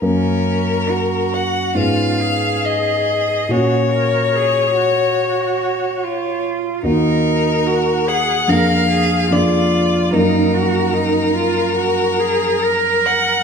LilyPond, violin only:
\new Staff \with { instrumentName = "Violin" } { \time 4/4 \key fis \major \tempo 4 = 72 ais'4. fis''8 eis''4 dis''4 | cis''2.~ cis''8 r8 | ais'4. fis''8 eis''4 d''4 | ais'2.~ ais'8 fis''8 | }